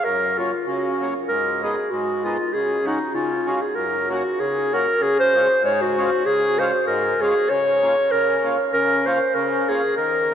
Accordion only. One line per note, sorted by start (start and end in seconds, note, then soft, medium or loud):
0.05 0.53 F#2 medium
0.38 0.51 F#3 medium
0.38 0.51 A#3 medium
0.38 0.52 C#4 medium
0.67 1.14 C#3 medium
1.00 1.13 F#3 medium
1.00 1.14 A#3 soft
1.00 1.14 C#4 medium
1.29 1.76 G#2 medium
1.62 1.75 G#3 medium
1.62 1.76 B3 medium
1.62 1.76 D#4 medium
1.92 2.38 G#2 medium
2.24 2.37 G#3 soft
2.24 2.38 B3 soft
2.24 2.38 D#4 medium
2.54 3.00 C#3 medium
2.85 2.98 G#3 medium
2.85 2.98 C#4 medium
2.85 2.99 F#4 medium
3.14 3.61 C#3 medium
3.46 3.60 G#3 medium
3.46 3.60 C#4 medium
3.46 3.60 F4 medium
3.76 4.23 F#2 medium
4.09 4.22 A#3 medium
4.09 4.23 C#4 soft
4.09 4.24 F#4 medium
4.40 4.87 C#3 medium
4.72 4.85 A#3 medium
4.72 4.86 C#4 medium
4.72 4.86 F#4 medium
5.01 5.48 C#3 medium
5.34 5.47 G#3 medium
5.34 5.48 C#4 medium
5.34 5.48 F4 medium
5.63 6.10 G#2 medium
5.97 6.10 G#3 medium
5.97 6.10 C#4 soft
5.97 6.10 F4 medium
6.25 6.72 C#3 medium
6.58 6.71 G#3 medium
6.58 6.72 C#4 soft
6.58 6.72 F4 medium
6.87 7.34 G#2 medium
7.21 7.33 G#3 medium
7.21 7.34 C#4 medium
7.21 7.34 F4 medium
7.50 7.96 C#3 medium
7.82 7.95 A#3 medium
7.82 7.95 C#4 medium
7.82 7.96 F4 medium
8.12 8.58 C#3 medium
8.43 8.56 A#3 medium
8.43 8.57 C#4 medium
8.43 8.57 F4 medium
8.73 9.19 C#3 medium
9.05 9.18 A#3 soft
9.05 9.19 C#4 soft
9.05 9.19 F4 medium
9.35 9.82 C#3 medium
9.68 9.81 A#3 soft
9.68 9.81 C#4 soft
9.68 9.82 F4 medium
9.97 10.34 D#3 medium